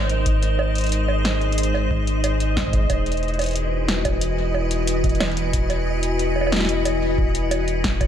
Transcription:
Already playing: sub bass G#1, ambient pad G#3 D#4 A#4 C5, synth texture D#5
0.00 high bongo
0.03 high bongo
0.05 high bongo
0.07 closed hi-hat, high bongo
0.26 ambient pad G#4, kick, closed hi-hat
0.43 closed hi-hat
0.59 high bongo
0.75 closed hi-hat
0.78 closed hi-hat
0.81 closed hi-hat
0.84 closed hi-hat
0.87 closed hi-hat
0.89 closed hi-hat
0.92 closed hi-hat
1.08 high bongo
1.25 snare
1.41 closed hi-hat
1.52 closed hi-hat
1.58 closed hi-hat
1.63 closed hi-hat
1.74 high bongo
1.91 kick
2.07 closed hi-hat
2.24 closed hi-hat, high bongo
2.40 closed hi-hat
2.57 kick, snare
2.62 kick
2.68 kick
2.73 kick, closed hi-hat
2.79 kick
2.84 kick
2.90 sub bass E1, ambient pad E3 E4 F#4 B4, kick, closed hi-hat, high bongo
3.06 closed hi-hat
3.12 closed hi-hat
3.17 closed hi-hat
3.23 closed hi-hat
3.28 closed hi-hat
3.34 closed hi-hat
3.39 closed hi-hat, high bongo
3.42 closed hi-hat
3.44 closed hi-hat
3.46 closed hi-hat
3.49 closed hi-hat
3.51 closed hi-hat
3.53 closed hi-hat
3.56 closed hi-hat
3.88 snare
4.05 kick, closed hi-hat, high bongo
4.21 closed hi-hat
4.54 high bongo
4.71 closed hi-hat
4.87 closed hi-hat
5.04 kick, closed hi-hat
5.09 closed hi-hat
5.15 closed hi-hat
5.20 snare, closed hi-hat, high bongo
5.26 closed hi-hat
5.32 closed hi-hat
5.37 closed hi-hat
5.53 kick, closed hi-hat
5.70 closed hi-hat, high bongo
6.03 closed hi-hat
6.19 closed hi-hat
6.36 high bongo
6.41 high bongo
6.47 high bongo
6.52 snare
6.56 snare
6.61 snare
6.65 snare
6.69 closed hi-hat
6.85 closed hi-hat, high bongo
7.18 kick
7.35 closed hi-hat
7.51 closed hi-hat, high bongo
7.68 closed hi-hat
7.84 kick, snare
8.01 kick, closed hi-hat, high bongo

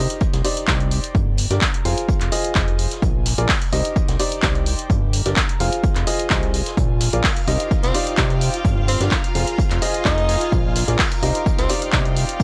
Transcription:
Already playing: upright piano D#4 G4 C5 D#5, string section D#4 A#4
0.10 closed hi-hat
0.20 string section G5, kick, closed hi-hat
0.33 analog synth bass C2, string section C5, snare, closed hi-hat
0.44 upright piano D#4 G4 C5 D5, closed hi-hat, open hi-hat
0.51 string section D5
0.57 closed hi-hat
0.67 analog synth bass C2, upright piano D#4 G4 C5 D5, kick, snare, clap, closed hi-hat
0.80 closed hi-hat
0.91 closed hi-hat, open hi-hat
1.04 closed hi-hat
1.15 analog synth bass G1, string section G4, kick, closed hi-hat
1.37 closed hi-hat, open hi-hat
1.47 analog synth bass G1, upright piano D4 G4 A#4 D5, string section A#4 A#5, snare, closed hi-hat
1.61 kick, snare, clap, closed hi-hat
1.74 closed hi-hat
1.85 analog synth bass F1, upright piano F4 G#4 C5 F5, string section F4, closed hi-hat, open hi-hat
1.96 string section C5, closed hi-hat
2.09 kick, closed hi-hat
2.21 analog synth bass F1, clap, closed hi-hat
2.31 upright piano F4 G#4 C5 D#5, closed hi-hat, open hi-hat
2.38 string section D#5 G#5
2.44 closed hi-hat
2.55 analog synth bass F1, upright piano F4 G#4 C5 D#5, kick, snare, clap, closed hi-hat
2.68 closed hi-hat
2.78 closed hi-hat, open hi-hat
2.91 snare, closed hi-hat
3.02 analog synth bass A#1, kick, closed hi-hat
3.15 string section A#4
3.26 snare, closed hi-hat, open hi-hat
3.33 string section D6
3.38 analog synth bass A#1, upright piano F4 G#4 A#4 D5, closed hi-hat
3.49 kick, snare, clap, open hi-hat
3.62 closed hi-hat
3.72 analog synth bass C2, upright piano D#4 G4 C5 D#5, string section D#4, closed hi-hat, open hi-hat
3.77 string section C5
3.85 closed hi-hat
3.96 kick, closed hi-hat
4.08 analog synth bass C2, snare, closed hi-hat
4.19 upright piano D#4 G4 C5 D5, closed hi-hat, open hi-hat
4.26 string section G5
4.32 closed hi-hat
4.42 analog synth bass C2, upright piano D#4 G4 C5 D5, kick, snare, clap, closed hi-hat
4.55 closed hi-hat
4.66 closed hi-hat, open hi-hat
4.79 closed hi-hat
4.90 analog synth bass G1, string section G4, kick, closed hi-hat
5.13 string section A#4, closed hi-hat, open hi-hat
5.22 analog synth bass G1, upright piano D4 G4 A#4 D5, string section A#5, snare, closed hi-hat
5.36 kick, snare, clap, closed hi-hat
5.49 closed hi-hat
5.60 analog synth bass F1, string section F4, upright piano F4 G#4 C5 F5, closed hi-hat, open hi-hat
5.73 closed hi-hat
5.83 string section C5 D#5, kick, closed hi-hat
5.95 analog synth bass F1, clap, closed hi-hat
6.07 upright piano F4 G#4 C5 D#5, closed hi-hat, open hi-hat
6.13 string section G#5
6.19 closed hi-hat
6.30 analog synth bass C2, upright piano F4 G#4 C5 D#5, kick, snare, clap, closed hi-hat
6.43 closed hi-hat
6.54 closed hi-hat, open hi-hat
6.66 snare, closed hi-hat
6.77 analog synth bass A#1, string machine F4 F5, kick, closed hi-hat
7.00 snare, closed hi-hat, open hi-hat
7.06 string section A#4 D6
7.13 analog synth bass A#1, upright piano F4 G#4 A#4 D5, closed hi-hat
7.24 kick, snare, clap, open hi-hat
7.37 closed hi-hat
7.48 analog synth bass C2, upright piano D#4 G4 C5 D#5, string section D#4, closed hi-hat, open hi-hat
7.60 string section C5, closed hi-hat
7.71 kick, closed hi-hat
7.83 analog synth bass C2, tenor saxophone C4, snare, closed hi-hat
7.94 upright piano D#4 G4 C5 D5, closed hi-hat, open hi-hat
8.01 string section G5
8.07 closed hi-hat
8.17 analog synth bass C2, upright piano D#4 G4 C5 D5, kick, snare, clap, closed hi-hat
8.30 closed hi-hat
8.41 closed hi-hat, open hi-hat
8.54 closed hi-hat
8.65 analog synth bass G1, string section G4, kick, closed hi-hat
8.88 tenor saxophone C4, closed hi-hat, open hi-hat
8.97 analog synth bass G1, upright piano D4 G4 A#4 D5, string section A#4 A#5, closed hi-hat
9.01 snare
9.11 kick, snare, clap, closed hi-hat
9.24 closed hi-hat
9.35 analog synth bass F1, string section F4, upright piano F4 G#4 C5 F5, closed hi-hat, open hi-hat
9.45 string section C5, closed hi-hat
9.59 kick, closed hi-hat
9.71 analog synth bass F1, clap, closed hi-hat
9.80 upright piano F4 G#4 C5 D#5, string section G#5, closed hi-hat, open hi-hat
9.86 string section D#5
9.94 closed hi-hat
10.05 analog synth bass F1, tenor saxophone D#4, upright piano F4 G#4 C5 D#5, kick, snare, clap, closed hi-hat
10.18 closed hi-hat
10.29 closed hi-hat, open hi-hat
10.41 snare, closed hi-hat
10.52 analog synth bass A#1, kick, closed hi-hat, riser
10.76 snare, closed hi-hat, open hi-hat
10.83 string section A#4 D6
10.88 analog synth bass A#1, upright piano F4 G#4 A#4 D5, closed hi-hat
10.99 kick, snare, clap, open hi-hat
11.12 closed hi-hat
11.23 analog synth bass C2, upright piano D#4 G4 C5 D#5, string section D#4, closed hi-hat, open hi-hat
11.35 string section C5, closed hi-hat
11.46 string section G5, kick, closed hi-hat
11.58 analog synth bass C2, tenor saxophone C4, snare, closed hi-hat
11.69 upright piano D#4 G4 C5 D5, closed hi-hat, open hi-hat
11.82 closed hi-hat
11.92 analog synth bass C2, upright piano D#4 G4 C5 D5, kick, snare, clap, closed hi-hat
12.05 closed hi-hat
12.16 closed hi-hat, open hi-hat
12.29 closed hi-hat
12.40 analog synth bass G1, string section D4, kick, closed hi-hat

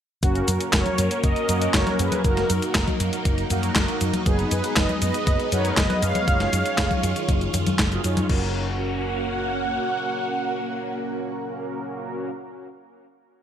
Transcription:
0.23 fingered electric bass F#1, string machine F#3 A#3 C#4, analog polysynth A#3 C#4 F#4 A#4, kick, closed hi-hat, cabasa
0.35 closed hi-hat, cabasa
0.48 fingered electric bass F#2, analog polysynth F#4 A#4, closed hi-hat, cabasa
0.61 closed hi-hat, cabasa
0.73 fingered electric bass F#1, analog polysynth A#4 C#5, kick, snare, clap, closed hi-hat, cabasa
0.86 closed hi-hat, high conga, cabasa
0.98 fingered electric bass F#2, closed hi-hat, cabasa
1.11 closed hi-hat, cabasa
1.24 fingered electric bass F#1, analog polysynth A#4 D#5, kick, closed hi-hat, cabasa
1.36 closed hi-hat, cabasa
1.49 fingered electric bass F#2, analog polysynth A#3 C#4 F#4 A#4, closed hi-hat, cabasa
1.62 closed hi-hat, cabasa
1.74 fingered electric bass F#1, analog polysynth A#4 C#5, kick, snare, clap, closed hi-hat, cabasa
1.87 snare, closed hi-hat, high conga, cabasa
1.99 fingered electric bass F#2, analog polysynth G#4 B4, closed hi-hat, cabasa
2.12 closed hi-hat, high conga, cabasa
2.24 fingered electric bass F#1, analog polysynth A#3 D#4 F#4 A#4, string machine A#3 D#4, kick, closed hi-hat, cabasa
2.37 snare, closed hi-hat, cabasa
2.50 fingered electric bass F#2, closed hi-hat, cabasa
2.62 closed hi-hat, cabasa
2.75 fingered electric bass F#1, kick, snare, clap, closed hi-hat, cabasa
2.88 kick, closed hi-hat, high conga, cabasa
3.00 fingered electric bass F#2, closed hi-hat, cabasa
3.13 closed hi-hat, cabasa
3.25 fingered electric bass F#1, kick, closed hi-hat, cabasa
3.38 closed hi-hat, cabasa
3.50 fingered electric bass F#2, analog polysynth A#3 D#4 F#4 A#4, closed hi-hat, high conga, cabasa
3.63 closed hi-hat, cabasa
3.76 fingered electric bass F#1, kick, snare, clap, closed hi-hat, cabasa
3.88 closed hi-hat, cabasa
4.01 fingered electric bass F#2, closed hi-hat, cabasa
4.14 closed hi-hat, high conga, cabasa
4.26 fingered electric bass F#1, analog polysynth F#3 B3 D#4 G#4 B4, string machine G#3 B3, kick, closed hi-hat, cabasa
4.39 closed hi-hat, cabasa
4.51 fingered electric bass F#2, analog polysynth G#4 B4, closed hi-hat, cabasa
4.64 closed hi-hat, cabasa
4.76 fingered electric bass F#1, analog polysynth B4 D#5, kick, snare, clap, closed hi-hat, cabasa
4.89 closed hi-hat, high conga, cabasa
5.02 fingered electric bass F#2, analog polysynth B4 D#5, closed hi-hat, cabasa
5.14 closed hi-hat, cabasa
5.27 fingered electric bass F#1, kick, closed hi-hat, cabasa
5.40 closed hi-hat, cabasa
5.52 fingered electric bass F#2, analog polysynth F#3 B3 D#4 G#4 A#4 B4 C#5, closed hi-hat, cabasa
5.65 closed hi-hat, cabasa
5.77 fingered electric bass F#1, analog polysynth B4 D#5, kick, snare, clap, closed hi-hat, cabasa
5.90 snare, closed hi-hat, high conga, cabasa
6.02 fingered electric bass F#2, analog polysynth C#5 F5, closed hi-hat, cabasa
6.15 closed hi-hat, high conga, cabasa
6.28 fingered electric bass F#1, string machine D#3 C#4 F4, analog polysynth F#3 D#4 F4 G#4 C#5, kick, closed hi-hat, cabasa
6.40 snare, closed hi-hat, cabasa
6.53 fingered electric bass F#2, closed hi-hat, cabasa
6.66 closed hi-hat, cabasa
6.78 fingered electric bass F#1, kick, snare, clap, closed hi-hat, cabasa
6.91 kick, closed hi-hat, high conga, cabasa
7.03 fingered electric bass F#2, closed hi-hat, cabasa
7.16 closed hi-hat, cabasa
7.29 fingered electric bass F#1, kick, closed hi-hat, cabasa
7.41 closed hi-hat, cabasa
7.54 fingered electric bass F#2, closed hi-hat, high conga, cabasa
7.67 closed hi-hat, high conga, cabasa
7.79 fingered electric bass F#1, kick, snare, clap, closed hi-hat, cabasa
7.92 analog polysynth F#3 D#4 F4 G#4 D#5, closed hi-hat, cabasa
8.04 fingered electric bass F#2, analog polysynth D#4 F4 G#4 C#5, closed hi-hat, cabasa
8.17 closed hi-hat, high conga, cabasa
8.29 fingered electric bass F#1, analog polysynth A#3 C#4 F#4 A#4 F#5, string machine A#3 C#4 F#4, kick, crash

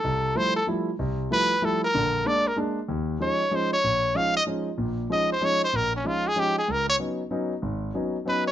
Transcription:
Already playing: trumpet A4
0.04 grand piano C2
0.35 grand piano F3 G3 A3 E4, trumpet C5
0.56 trumpet A4
0.67 grand piano F3 G3 A3 E4
0.99 grand piano C2
1.30 grand piano F3 G3 A3 E4, trumpet B4
1.62 grand piano F3 G3 A3 E4, trumpet A4
1.84 trumpet A#4
1.94 grand piano A#1 D3
2.25 grand piano G#3 A#3 D4, trumpet D5
2.47 trumpet A#4
2.56 grand piano G#3 A#3 D4
2.88 grand piano D#2
3.20 grand piano F3 G#3 C#4 D#4, trumpet C#5
3.51 grand piano F3 G#3 C#4 D#4
3.55 trumpet C5
3.73 trumpet C#5
3.84 grand piano A#1
4.15 grand piano F3 G#3 C#4 D#4, trumpet F5
4.37 trumpet D#5
4.47 grand piano F3 G#3 C#4 D#4
4.78 grand piano A#1 A#2
5.10 grand piano F3 G#3 C#4 D#4, trumpet D#5
5.32 trumpet C5
5.41 grand piano F3 G#3 C#4 D#4, trumpet C#5
5.65 trumpet C5
5.73 grand piano A#1, trumpet A#4
5.96 trumpet C#4
6.04 grand piano F3 G#3 C#4 D#4, trumpet F4
6.28 trumpet G#4
6.36 grand piano F3 G#3 C#4 D#4, trumpet G4
6.59 trumpet G#4
6.68 grand piano C#2, trumpet A#4
6.89 trumpet C#5
6.99 grand piano F#3 B3 C#4 D#4
7.31 grand piano F#3 B3 C#4 D#4
7.62 grand piano G#1
7.94 grand piano F#3 B3 C#4 D#4
8.25 grand piano F#3 B3 C#4 D#4, trumpet B4
8.48 trumpet C#5

